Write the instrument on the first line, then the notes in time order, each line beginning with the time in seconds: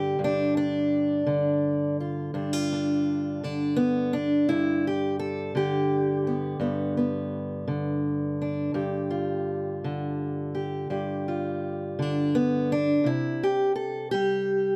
steel-string acoustic guitar
Already playing: G2 D3 G4
0.19 G2
0.24 D4
0.57 D4
1.26 D3
2.00 F4
2.34 G2 D4
2.53 F4
2.72 D4
3.44 D3 D4
3.76 B3
4.13 D4
4.49 G2 E4
4.87 G4
5.19 A4
5.55 D3 G4
6.27 B3
6.60 G2 B3
6.97 B3
7.68 D3
8.42 D4
8.74 G2 G4
9.10 F4
9.84 D3
10.55 G4
10.90 G2 G4
11.28 F4
11.99 D3 D4
12.35 B3
12.72 D4
13.04 C3 E4
13.43 G4
13.76 A4
14.11 G3 G4